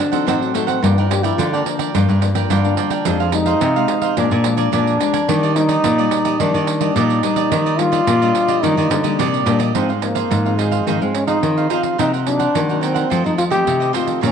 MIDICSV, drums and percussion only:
0, 0, Header, 1, 2, 480
1, 0, Start_track
1, 0, Key_signature, -3, "major"
1, 0, Tempo, 558140
1, 714, Time_signature, 4, 2, 24, 8
1, 8385, Key_signature, -4, "major"
1, 12313, End_track
2, 0, Start_track
2, 0, Title_t, "Pandeiro"
2, 109, Note_on_c, 9, 54, 53
2, 195, Note_off_c, 9, 54, 0
2, 241, Note_on_c, 9, 54, 75
2, 327, Note_off_c, 9, 54, 0
2, 364, Note_on_c, 9, 54, 35
2, 450, Note_off_c, 9, 54, 0
2, 472, Note_on_c, 9, 54, 65
2, 558, Note_off_c, 9, 54, 0
2, 585, Note_on_c, 9, 54, 55
2, 671, Note_off_c, 9, 54, 0
2, 720, Note_on_c, 9, 54, 73
2, 806, Note_off_c, 9, 54, 0
2, 843, Note_on_c, 9, 54, 30
2, 929, Note_off_c, 9, 54, 0
2, 955, Note_on_c, 9, 54, 76
2, 1041, Note_off_c, 9, 54, 0
2, 1068, Note_on_c, 9, 54, 58
2, 1154, Note_off_c, 9, 54, 0
2, 1197, Note_on_c, 9, 54, 88
2, 1283, Note_off_c, 9, 54, 0
2, 1323, Note_on_c, 9, 54, 33
2, 1409, Note_off_c, 9, 54, 0
2, 1429, Note_on_c, 9, 54, 69
2, 1515, Note_off_c, 9, 54, 0
2, 1541, Note_on_c, 9, 54, 62
2, 1627, Note_off_c, 9, 54, 0
2, 1675, Note_on_c, 9, 54, 77
2, 1761, Note_off_c, 9, 54, 0
2, 1801, Note_on_c, 9, 54, 33
2, 1887, Note_off_c, 9, 54, 0
2, 1909, Note_on_c, 9, 54, 66
2, 1995, Note_off_c, 9, 54, 0
2, 2022, Note_on_c, 9, 54, 62
2, 2108, Note_off_c, 9, 54, 0
2, 2151, Note_on_c, 9, 54, 73
2, 2237, Note_off_c, 9, 54, 0
2, 2275, Note_on_c, 9, 54, 34
2, 2361, Note_off_c, 9, 54, 0
2, 2384, Note_on_c, 9, 54, 67
2, 2470, Note_off_c, 9, 54, 0
2, 2497, Note_on_c, 9, 54, 57
2, 2583, Note_off_c, 9, 54, 0
2, 2625, Note_on_c, 9, 54, 91
2, 2711, Note_off_c, 9, 54, 0
2, 2751, Note_on_c, 9, 54, 30
2, 2837, Note_off_c, 9, 54, 0
2, 2857, Note_on_c, 9, 54, 74
2, 2943, Note_off_c, 9, 54, 0
2, 2973, Note_on_c, 9, 54, 52
2, 3059, Note_off_c, 9, 54, 0
2, 3105, Note_on_c, 9, 54, 81
2, 3191, Note_off_c, 9, 54, 0
2, 3235, Note_on_c, 9, 54, 31
2, 3321, Note_off_c, 9, 54, 0
2, 3338, Note_on_c, 9, 54, 71
2, 3424, Note_off_c, 9, 54, 0
2, 3453, Note_on_c, 9, 54, 49
2, 3539, Note_off_c, 9, 54, 0
2, 3585, Note_on_c, 9, 54, 71
2, 3671, Note_off_c, 9, 54, 0
2, 3707, Note_on_c, 9, 54, 34
2, 3793, Note_off_c, 9, 54, 0
2, 3818, Note_on_c, 9, 54, 77
2, 3904, Note_off_c, 9, 54, 0
2, 3935, Note_on_c, 9, 54, 54
2, 4021, Note_off_c, 9, 54, 0
2, 4065, Note_on_c, 9, 54, 69
2, 4151, Note_off_c, 9, 54, 0
2, 4191, Note_on_c, 9, 54, 32
2, 4277, Note_off_c, 9, 54, 0
2, 4305, Note_on_c, 9, 54, 66
2, 4391, Note_off_c, 9, 54, 0
2, 4417, Note_on_c, 9, 54, 64
2, 4503, Note_off_c, 9, 54, 0
2, 4548, Note_on_c, 9, 54, 84
2, 4634, Note_off_c, 9, 54, 0
2, 4672, Note_on_c, 9, 54, 35
2, 4758, Note_off_c, 9, 54, 0
2, 4782, Note_on_c, 9, 54, 70
2, 4868, Note_off_c, 9, 54, 0
2, 4891, Note_on_c, 9, 54, 59
2, 4977, Note_off_c, 9, 54, 0
2, 5022, Note_on_c, 9, 54, 87
2, 5108, Note_off_c, 9, 54, 0
2, 5149, Note_on_c, 9, 54, 32
2, 5235, Note_off_c, 9, 54, 0
2, 5257, Note_on_c, 9, 54, 72
2, 5343, Note_off_c, 9, 54, 0
2, 5375, Note_on_c, 9, 54, 56
2, 5461, Note_off_c, 9, 54, 0
2, 5503, Note_on_c, 9, 54, 74
2, 5589, Note_off_c, 9, 54, 0
2, 5629, Note_on_c, 9, 54, 31
2, 5715, Note_off_c, 9, 54, 0
2, 5739, Note_on_c, 9, 54, 67
2, 5825, Note_off_c, 9, 54, 0
2, 5855, Note_on_c, 9, 54, 62
2, 5941, Note_off_c, 9, 54, 0
2, 5984, Note_on_c, 9, 54, 65
2, 6070, Note_off_c, 9, 54, 0
2, 6107, Note_on_c, 9, 54, 34
2, 6193, Note_off_c, 9, 54, 0
2, 6219, Note_on_c, 9, 54, 66
2, 6305, Note_off_c, 9, 54, 0
2, 6331, Note_on_c, 9, 54, 59
2, 6417, Note_off_c, 9, 54, 0
2, 6464, Note_on_c, 9, 54, 86
2, 6550, Note_off_c, 9, 54, 0
2, 6590, Note_on_c, 9, 54, 33
2, 6676, Note_off_c, 9, 54, 0
2, 6699, Note_on_c, 9, 54, 71
2, 6785, Note_off_c, 9, 54, 0
2, 6816, Note_on_c, 9, 54, 58
2, 6902, Note_off_c, 9, 54, 0
2, 6944, Note_on_c, 9, 54, 86
2, 7030, Note_off_c, 9, 54, 0
2, 7069, Note_on_c, 9, 54, 33
2, 7155, Note_off_c, 9, 54, 0
2, 7179, Note_on_c, 9, 54, 67
2, 7265, Note_off_c, 9, 54, 0
2, 7297, Note_on_c, 9, 54, 54
2, 7383, Note_off_c, 9, 54, 0
2, 7427, Note_on_c, 9, 54, 78
2, 7513, Note_off_c, 9, 54, 0
2, 7554, Note_on_c, 9, 54, 37
2, 7640, Note_off_c, 9, 54, 0
2, 7662, Note_on_c, 9, 54, 81
2, 7748, Note_off_c, 9, 54, 0
2, 7775, Note_on_c, 9, 54, 59
2, 7861, Note_off_c, 9, 54, 0
2, 7907, Note_on_c, 9, 54, 77
2, 7993, Note_off_c, 9, 54, 0
2, 8031, Note_on_c, 9, 54, 33
2, 8117, Note_off_c, 9, 54, 0
2, 8139, Note_on_c, 9, 54, 74
2, 8225, Note_off_c, 9, 54, 0
2, 8253, Note_on_c, 9, 54, 60
2, 8339, Note_off_c, 9, 54, 0
2, 8384, Note_on_c, 9, 54, 83
2, 8470, Note_off_c, 9, 54, 0
2, 8511, Note_on_c, 9, 54, 32
2, 8597, Note_off_c, 9, 54, 0
2, 8618, Note_on_c, 9, 54, 67
2, 8704, Note_off_c, 9, 54, 0
2, 8733, Note_on_c, 9, 54, 57
2, 8819, Note_off_c, 9, 54, 0
2, 8869, Note_on_c, 9, 54, 75
2, 8955, Note_off_c, 9, 54, 0
2, 8995, Note_on_c, 9, 54, 31
2, 9081, Note_off_c, 9, 54, 0
2, 9105, Note_on_c, 9, 54, 64
2, 9191, Note_off_c, 9, 54, 0
2, 9220, Note_on_c, 9, 54, 50
2, 9306, Note_off_c, 9, 54, 0
2, 9351, Note_on_c, 9, 54, 66
2, 9437, Note_off_c, 9, 54, 0
2, 9476, Note_on_c, 9, 54, 31
2, 9562, Note_off_c, 9, 54, 0
2, 9585, Note_on_c, 9, 54, 72
2, 9671, Note_off_c, 9, 54, 0
2, 9698, Note_on_c, 9, 54, 55
2, 9784, Note_off_c, 9, 54, 0
2, 9830, Note_on_c, 9, 54, 72
2, 9916, Note_off_c, 9, 54, 0
2, 9954, Note_on_c, 9, 54, 28
2, 10040, Note_off_c, 9, 54, 0
2, 10063, Note_on_c, 9, 54, 60
2, 10149, Note_off_c, 9, 54, 0
2, 10177, Note_on_c, 9, 54, 52
2, 10263, Note_off_c, 9, 54, 0
2, 10313, Note_on_c, 9, 54, 87
2, 10399, Note_off_c, 9, 54, 0
2, 10438, Note_on_c, 9, 54, 33
2, 10524, Note_off_c, 9, 54, 0
2, 10549, Note_on_c, 9, 54, 66
2, 10635, Note_off_c, 9, 54, 0
2, 10661, Note_on_c, 9, 54, 50
2, 10747, Note_off_c, 9, 54, 0
2, 10795, Note_on_c, 9, 54, 81
2, 10881, Note_off_c, 9, 54, 0
2, 10918, Note_on_c, 9, 54, 27
2, 11004, Note_off_c, 9, 54, 0
2, 11031, Note_on_c, 9, 54, 63
2, 11117, Note_off_c, 9, 54, 0
2, 11144, Note_on_c, 9, 54, 55
2, 11230, Note_off_c, 9, 54, 0
2, 11278, Note_on_c, 9, 54, 64
2, 11364, Note_off_c, 9, 54, 0
2, 11404, Note_on_c, 9, 54, 30
2, 11490, Note_off_c, 9, 54, 0
2, 11510, Note_on_c, 9, 54, 67
2, 11596, Note_off_c, 9, 54, 0
2, 11623, Note_on_c, 9, 54, 62
2, 11709, Note_off_c, 9, 54, 0
2, 11756, Note_on_c, 9, 54, 66
2, 11842, Note_off_c, 9, 54, 0
2, 11883, Note_on_c, 9, 54, 31
2, 11969, Note_off_c, 9, 54, 0
2, 11992, Note_on_c, 9, 54, 68
2, 12078, Note_off_c, 9, 54, 0
2, 12104, Note_on_c, 9, 54, 51
2, 12190, Note_off_c, 9, 54, 0
2, 12239, Note_on_c, 9, 54, 73
2, 12313, Note_off_c, 9, 54, 0
2, 12313, End_track
0, 0, End_of_file